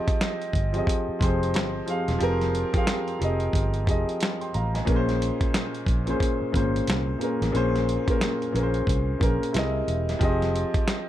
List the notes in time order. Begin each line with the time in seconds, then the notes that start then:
Already playing: F3 C4 G4 G#4 D#5
0.08 kick, closed hi-hat
0.21 snare, closed hi-hat
0.42 closed hi-hat
0.53 G1, kick, closed hi-hat
0.72 F3 C4 G4 G#4, closed hi-hat
0.77 D#5
0.87 kick, closed hi-hat
1.09 muted fingered electric bass stroke
1.19 F1 F3 C4 G4 G#4, kick, closed hi-hat
1.23 C5
1.43 closed hi-hat
1.54 G1, snare, closed hi-hat
1.86 F3 C4 G4 G#4, closed hi-hat
1.90 F5
2.08 E1, snare, closed hi-hat
2.18 F1 F3 C4 G4 G#4, closed hi-hat
2.23 A#4
2.41 snare, closed hi-hat
2.55 closed hi-hat
2.72 F3 C4 G4 G#4, kick, closed hi-hat
2.77 F5
2.87 snare, closed hi-hat
3.08 closed hi-hat
3.19 F1 F3 C4 G4 G#4, closed hi-hat
3.23 D#5
3.40 closed hi-hat
3.53 G1, kick, closed hi-hat
3.74 closed hi-hat
3.85 F1 F3 C4 G4 G#4, kick, closed hi-hat
3.89 D#5
4.09 closed hi-hat
4.21 snare, closed hi-hat
4.41 G5 C6, closed hi-hat
4.54 A1 F5 A#5, closed hi-hat
4.74 D#5 G#5, snare, closed hi-hat
4.85 A#1 A#2 A#3 C#4 G#4, kick, closed hi-hat
4.89 A#4
4.96 C5
5.09 snare, closed hi-hat
5.22 closed hi-hat
5.41 kick, closed hi-hat
5.54 snare, closed hi-hat
5.75 closed hi-hat
5.87 A#1, kick, closed hi-hat
6.06 A#2 A#3 C#4 G#4, closed hi-hat
6.10 C5
6.20 kick, closed hi-hat
6.42 muted fingered electric bass stroke
6.52 G#1 A#2 A#3 C#4 G#4, kick, closed hi-hat
6.56 C5
6.76 closed hi-hat
6.87 C2, snare, closed hi-hat
7.18 A#2 A#3 C#4 G#4, closed hi-hat
7.23 A#4
7.42 A1, snare, closed hi-hat
7.52 A#1 A#2 A#3 C#4 G#4, closed hi-hat
7.56 C5
7.76 snare, closed hi-hat
7.89 closed hi-hat
8.06 A#2 A#3 C#4 G#4, kick, closed hi-hat
8.10 A#4
8.21 snare, closed hi-hat
8.42 closed hi-hat
8.52 A#1 A#2 A#3 C#4 G#4, closed hi-hat
8.56 A#4
8.63 C5
8.74 closed hi-hat
8.87 C2, kick, closed hi-hat
9.19 A#1 A#2 A#3 C#4 G#4, kick, closed hi-hat
9.23 A#4
9.43 closed hi-hat
9.52 C2 C3 C4 E4 G#4 A#4, closed hi-hat
9.57 D#5, snare
9.88 E1, closed hi-hat
10.09 snare, closed hi-hat
10.19 F1 F3 C4 G4 G#4, kick, closed hi-hat
10.23 D#5
10.42 snare, closed hi-hat
10.56 closed hi-hat
10.74 kick, closed hi-hat
10.88 snare, closed hi-hat